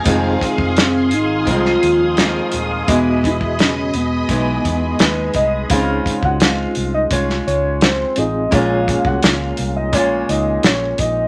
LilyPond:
<<
  \new Staff \with { instrumentName = "String machine" } { \time 4/4 \key des \major \tempo 4 = 85 << { <aes' ees'''>1~ | <aes' ees'''>1 | r1 | r1 | } \\ { <f'' c'''>1 | <dis'' b''>1 | r1 | r1 | } >> }
  \new Staff \with { instrumentName = "Soft synth lead" } { \time 4/4 \key des \major r8 c'8 c'8 ees'8 f'4. r8 | b8 e'8 des'8 b4. b'8 dis''8 | f''8. ges''16 f''8. ees''16 des''8 des''8 c''8 ees''8 | f''8. ges''16 f''8. ees''16 des''8 ees''8 des''8 ees''8 | }
  \new Staff \with { instrumentName = "Reed electric piano" } { \time 4/4 \key des \major <c' ees' f' aes'>1 | <b ges' gis' dis''>1 | <des' ees' f' aes'>2.~ <des' ees' f' aes'>8 <c' ees' f' aes'>8 | <des' f' aes' des''>1 | }
  \new Staff \with { instrumentName = "Nylon-string guitar" } { \clef bass \time 4/4 \key des \major <f, ees aes c'>8 <ees aes c'>4. <f, ees aes c'>4 <f, ees aes c'>4 | <e gis b dis'>8 <gis b>4. <e gis b dis'>4 <gis b dis'>4 | <des aes c' f'>4 <aes c' f'>4 <aes f'>2 | <bes, aes des' f'>2 <bes, aes des' f'>2 | }
  \new Staff \with { instrumentName = "Fingered electric bass" } { \clef bass \time 4/4 \key des \major f,,8 r16 f,,8. aes,,8 c,8 ees,4 ees,,8 | e,,4. e,,8 b,,8 e,8 dis,8 c,8 | des,8 r16 des,8. c,8 c,8 des,4 a,,8 | bes,,8. c,16 des,8 c,8 bes,,8 des,8 bes,,8 bes,,8 | }
  \new DrumStaff \with { instrumentName = "Drums" } \drummode { \time 4/4 <hh bd>8 <hh bd>16 bd16 <hh sn>8 hh8 <hh bd>16 sn16 hh8 <hh sn>8 hh8 | <hh bd>8 <hh bd>16 bd16 <hh sn>8 hh8 <hh bd>8 <hh bd>8 <hh sn>8 <hh bd>8 | <hh bd>8 <hh bd>16 bd16 <hh sn>8 hh8 <hh bd>16 sn16 hh8 <hh sn>8 hh8 | <hh bd>8 <hh bd>16 bd16 <hh sn>8 hh8 <hh bd>8 hh8 <hh sn>8 <hh bd>8 | }
>>